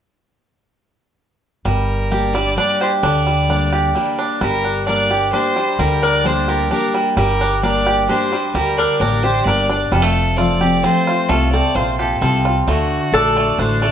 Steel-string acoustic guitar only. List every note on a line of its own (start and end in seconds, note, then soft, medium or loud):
1.65 2.53 G2 medium
2.11 2.33 G3 medium
2.11 2.34 A#3 medium
2.11 2.34 D4 medium
2.11 2.33 G4 medium
2.34 2.56 D4 soft
2.34 2.56 G4 medium
2.56 3.00 G3 medium
2.56 3.01 A#3 medium
2.56 3.01 D4 medium
2.56 3.01 G4 medium
3.03 3.90 D3 medium
3.49 3.93 G3 soft
3.49 3.93 A#3 medium
3.49 3.93 D4 medium
3.49 3.94 G4 medium
3.95 4.39 G3 medium
3.95 4.39 A#3 medium
3.95 4.39 D4 medium
3.95 4.40 G4 medium
4.41 5.28 G2 medium
4.88 5.10 G3 soft
4.88 5.10 A#3 medium
4.88 5.10 D4 medium
4.88 5.09 G4 medium
5.10 5.33 D4 soft
5.10 5.32 G4 medium
5.33 5.55 G3 medium
5.33 5.55 A#3 medium
5.33 5.56 D4 medium
5.33 5.55 G4 medium
5.56 5.79 D4 soft
5.56 5.78 G4 medium
5.79 6.66 D3 medium
6.25 6.68 G3 medium
6.25 6.68 A#3 medium
6.25 6.69 D4 medium
6.25 6.69 G4 medium
6.71 7.14 G3 medium
6.71 7.14 A#3 medium
6.71 7.15 D4 medium
6.71 7.15 G4 medium
7.17 8.04 G2 medium
7.62 8.06 G3 medium
7.62 8.06 A#3 medium
7.62 8.07 D4 medium
7.62 8.07 G4 medium
8.09 8.31 G3 medium
8.09 8.31 A#3 medium
8.09 8.31 D4 medium
8.09 8.30 G4 medium
8.31 8.54 D4 soft
8.31 8.53 G4 medium
8.54 9.42 D3 medium
9.00 9.22 G3 medium
9.00 9.23 A#3 medium
9.00 9.23 D4 medium
9.00 9.23 G4 medium
9.24 9.46 D4 soft
9.24 9.45 G4 medium
9.47 9.69 G3 medium
9.47 9.69 A#3 medium
9.47 9.69 D4 medium
9.47 9.68 G4 medium
9.70 9.92 D4 soft
9.70 9.91 G4 medium
9.93 10.80 F2 medium
10.38 10.60 F3 medium
10.38 10.61 A3 medium
10.38 10.61 C4 medium
10.38 10.60 F4 medium
10.61 10.84 C4 soft
10.61 10.83 F4 medium
10.84 11.27 F3 medium
10.84 11.28 A3 medium
10.84 11.28 C4 medium
10.84 11.28 F4 medium
11.29 12.17 C3 medium
11.76 12.19 A#2 medium
12.21 12.65 C3 medium
12.67 13.11 D3 medium
13.12 13.56 D3 medium
13.12 13.56 A3 medium
13.12 13.57 D4 medium
13.12 13.57 F#4 medium
13.58 13.92 D3 medium
13.58 13.92 A3 medium
13.58 13.92 D4 medium
13.58 13.92 F#4 medium